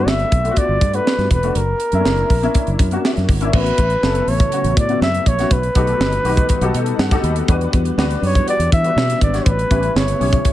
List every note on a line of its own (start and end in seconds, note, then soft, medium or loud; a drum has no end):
0.00 0.41 A3 medium
0.00 0.42 B3 medium
0.00 0.42 D4 medium
0.00 0.42 F#4 medium
0.06 0.24 G1 medium
0.06 0.59 E5 medium
0.06 snare loud
0.19 closed hi-hat soft
0.32 0.49 B1 medium
0.32 kick medium
0.32 closed hi-hat medium
0.44 0.91 A3 medium
0.44 0.91 B3 medium
0.44 0.91 D4 medium
0.44 0.51 F4 medium
0.44 closed hi-hat soft
0.51 0.93 F#4 medium
0.56 0.96 D5 medium
0.56 kick medium
0.56 closed hi-hat medium
0.69 0.77 G1 medium
0.81 0.99 G2 medium
0.81 kick medium
0.81 closed hi-hat medium
0.93 1.40 A3 medium
0.93 1.40 B3 medium
0.93 1.40 D4 medium
0.93 1.41 F#4 medium
0.93 1.30 B4 loud
0.93 closed hi-hat soft
1.07 snare loud
1.18 1.27 G2 medium
1.18 snare soft
1.18 closed hi-hat soft
1.31 1.43 E1 medium
1.31 1.58 B4 medium
1.31 kick medium
1.31 closed hi-hat medium
1.43 1.52 F1 medium
1.43 1.55 A3 medium
1.43 1.55 B3 medium
1.43 1.56 D4 medium
1.43 1.56 F#4 medium
1.43 closed hi-hat soft
1.55 1.72 F#1 medium
1.55 3.04 A#4 medium
1.55 closed hi-hat medium
1.80 closed hi-hat medium
1.92 2.01 F#2 medium
1.92 1.99 A3 medium
1.92 2.40 C#4 medium
1.92 2.40 D4 medium
1.92 2.40 E4 medium
1.92 closed hi-hat soft
1.98 2.41 A#3 medium
2.05 2.22 F#1 medium
2.05 snare medium
2.17 closed hi-hat soft
2.30 2.47 A#1 medium
2.30 kick medium
2.30 open hi-hat medium
2.42 2.89 A#3 medium
2.42 2.89 C#4 medium
2.42 2.89 D4 medium
2.42 2.90 E4 loud
2.42 closed hi-hat soft
2.54 kick medium
2.54 closed hi-hat medium
2.67 2.76 F#1 medium
2.67 closed hi-hat soft
2.79 2.96 F#2 medium
2.79 kick medium
2.79 closed hi-hat medium
2.91 3.38 A#3 medium
2.91 3.38 C#4 medium
2.91 3.39 D4 medium
2.91 3.39 F#4 medium
2.91 closed hi-hat soft
3.05 3.51 E5 medium
3.05 snare loud
3.17 3.26 F#2 medium
3.17 snare soft
3.17 closed hi-hat soft
3.29 3.41 G1 medium
3.29 kick medium
3.29 open hi-hat medium
3.41 3.50 G#1 medium
3.41 3.53 A#3 medium
3.41 3.52 C#4 medium
3.41 3.53 D4 medium
3.41 3.52 E4 loud
3.41 closed hi-hat soft
3.53 3.71 A1 medium
3.53 5.49 C#3 medium
3.53 5.49 F#3 medium
3.53 7.44 A3 medium
3.53 10.53 B3 medium
3.53 4.00 B3 medium
3.53 4.00 C#4 medium
3.53 5.49 E4 medium
3.53 4.00 E4 medium
3.53 4.01 F#4 medium
3.53 4.30 B4 medium
3.53 kick loud
3.53 crash medium
3.66 closed hi-hat soft
3.78 3.95 A1 medium
3.78 kick medium
3.78 closed hi-hat medium
3.90 closed hi-hat soft
4.03 4.20 F#1 medium
4.03 4.50 B3 medium
4.03 4.50 C#4 medium
4.03 4.50 E4 medium
4.03 4.50 A4 medium
4.03 snare loud
4.15 closed hi-hat soft
4.27 4.45 A1 medium
4.27 4.78 C#5 medium
4.27 open hi-hat medium
4.40 kick medium
4.40 closed hi-hat soft
4.52 4.87 B3 medium
4.52 4.87 C#4 medium
4.52 4.88 E4 medium
4.52 4.88 F#4 medium
4.52 closed hi-hat medium
4.64 4.73 A1 medium
4.64 closed hi-hat medium
4.77 4.94 A2 medium
4.77 5.01 D5 medium
4.77 kick loud
4.77 closed hi-hat medium
4.89 5.36 B3 medium
4.89 5.36 C#4 medium
4.89 5.36 E4 medium
4.89 5.36 F#4 medium
4.89 closed hi-hat soft
5.01 5.18 F#2 medium
5.01 5.29 E5 loud
5.01 snare loud
5.14 closed hi-hat medium
5.26 5.44 A#1 medium
5.26 5.54 C#5 medium
5.26 kick medium
5.26 closed hi-hat medium
5.38 5.51 B3 medium
5.38 5.51 C#4 medium
5.38 5.51 E4 medium
5.38 5.51 F#4 medium
5.38 snare soft
5.38 closed hi-hat medium
5.51 5.68 B1 loud
5.51 7.47 D#3 medium
5.51 9.42 G3 medium
5.51 7.00 B4 medium
5.51 9.42 F#5 medium
5.51 kick loud
5.51 closed hi-hat medium
5.63 closed hi-hat soft
5.75 5.93 B1 medium
5.75 6.22 D#4 medium
5.75 6.22 F#4 medium
5.75 6.22 G4 medium
5.75 6.23 A4 medium
5.75 kick medium
5.75 closed hi-hat medium
5.87 closed hi-hat soft
6.00 6.17 G1 medium
6.00 snare loud
6.12 closed hi-hat soft
6.24 6.42 B1 medium
6.24 6.60 D#4 medium
6.24 6.60 F#4 medium
6.24 6.60 G4 medium
6.24 6.60 B4 medium
6.24 open hi-hat medium
6.37 kick medium
6.37 closed hi-hat soft
6.49 kick medium
6.49 closed hi-hat medium
6.61 6.70 B1 medium
6.61 7.08 D#4 medium
6.61 7.09 F#4 medium
6.61 7.09 G4 medium
6.61 7.09 A4 loud
6.61 closed hi-hat medium
6.74 6.92 B2 medium
6.74 6.98 D#5 medium
6.74 closed hi-hat medium
6.86 closed hi-hat soft
6.99 7.16 G2 medium
6.99 7.23 F#5 medium
6.99 snare loud
7.11 7.47 D#4 medium
7.11 7.47 F#4 medium
7.11 7.47 G4 medium
7.11 7.47 A4 loud
7.11 kick medium
7.11 snare soft
7.11 closed hi-hat medium
7.23 7.41 D#2 medium
7.23 7.47 B5 medium
7.23 closed hi-hat medium
7.36 closed hi-hat medium
7.48 7.66 E2 loud
7.48 9.44 E3 medium
7.48 7.95 D4 medium
7.48 9.44 D4 medium
7.48 7.95 F#4 medium
7.48 7.95 G4 medium
7.48 7.96 B4 loud
7.48 kick loud
7.48 closed hi-hat medium
7.61 closed hi-hat soft
7.73 7.90 E2 loud
7.73 kick medium
7.73 closed hi-hat medium
7.85 closed hi-hat soft
7.98 8.15 D2 medium
7.98 8.45 D4 loud
7.98 8.45 F#4 medium
7.98 8.45 G4 medium
7.98 8.45 B4 loud
7.98 snare loud
8.11 closed hi-hat soft
8.22 8.40 F#2 medium
8.22 8.47 C#5 medium
8.22 open hi-hat medium
8.35 kick medium
8.35 closed hi-hat soft
8.47 8.82 D4 medium
8.47 8.82 F#4 medium
8.47 8.83 G4 medium
8.47 8.83 B4 medium
8.47 8.71 D5 loud
8.47 closed hi-hat medium
8.59 8.68 E2 medium
8.59 closed hi-hat medium
8.72 8.89 E3 medium
8.72 9.19 E5 loud
8.72 kick loud
8.72 closed hi-hat medium
8.84 9.31 D4 medium
8.84 9.31 F#4 medium
8.84 9.31 G4 medium
8.84 9.31 B4 medium
8.84 closed hi-hat soft
8.96 9.13 B2 medium
8.96 snare loud
9.10 snare soft
9.10 closed hi-hat medium
9.21 9.38 G#1 medium
9.21 9.48 D5 medium
9.21 kick medium
9.21 closed hi-hat medium
9.33 9.46 D4 medium
9.33 9.46 F#4 medium
9.33 9.46 G4 medium
9.33 9.46 C#5 medium
9.33 snare soft
9.33 closed hi-hat medium
9.45 9.63 A1 loud
9.45 10.53 C#3 medium
9.45 10.53 G3 medium
9.45 10.53 A3 medium
9.45 10.53 E4 loud
9.45 9.98 B4 loud
9.45 kick loud
9.45 closed hi-hat medium
9.59 closed hi-hat soft
9.70 9.88 A1 medium
9.70 10.17 C#4 medium
9.70 10.17 E4 medium
9.70 10.18 G4 medium
9.70 10.18 B4 medium
9.70 kick medium
9.70 closed hi-hat medium
9.83 closed hi-hat soft
9.96 10.13 G1 loud
9.96 10.53 C#5 medium
9.96 snare loud
10.08 closed hi-hat soft
10.20 10.38 B1 medium
10.20 10.53 C#4 medium
10.20 10.53 E4 medium
10.20 10.53 G4 medium
10.20 10.53 C#5 medium
10.20 open hi-hat medium
10.33 kick medium
10.33 closed hi-hat soft
10.45 kick medium
10.45 closed hi-hat medium